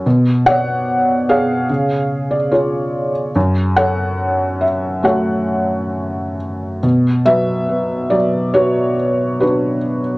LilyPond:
<<
  \new Staff \with { instrumentName = "Felt piano" } { \time 4/4 \key fis \minor \tempo 4 = 72 << { r8 fis''4 eis''4~ eis''16 d''16 cis''8. r16 | r8 fis''4 e''8 fis''4. r8 | \key b \minor r8 e''4 d''8 cis''4 b'8. r16 | } \\ { r8 <cis'' d''>4 <gis' cis''>4. <eis' gis'>4 | r8 <a' cis''>4. <a' cis''>2 | r8 b'4. fis'4 <d' fis'>4 | } >> }
  \new Staff \with { instrumentName = "Felt piano" } { \clef bass \time 4/4 \key fis \minor b,2 cis2 | fis,2 <a cis' fis'>2 | \key b \minor b,8 fis8 b8 fis8 b2 | }
>>